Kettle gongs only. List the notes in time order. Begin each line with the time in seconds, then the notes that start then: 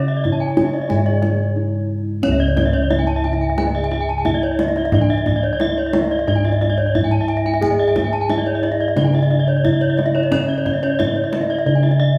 Already playing: C#3 C#4
0.25 D4
0.90 G#2
1.56 D4
2.23 C#4
2.28 C#2
2.91 D4
4.26 D4
4.94 D4
5.59 D4
6.27 G#2
6.95 D4
7.61 G#4
8.29 D4
8.96 C#3
9.64 D4
10.31 C#4
11.01 D4
11.66 C#3